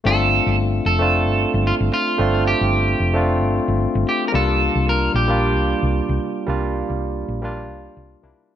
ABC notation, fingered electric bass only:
X:1
M:4/4
L:1/16
Q:"Swing 16ths" 1/4=112
K:C
V:1 name="Fingered electric bass" clef=bass
G,,,2 z G,,,2 z F,,,3 G,,, z G,,, z G,,, z2 | G,,,2 z G,,,2 z F,,,3 G,,, z G,,, z G,,, z2 | C,,2 z C,,2 z _B,,,3 C,, z C,, z C,, z2 | C,,2 z C,,2 z _B,,,3 C,, z C,, z C,, z2 |]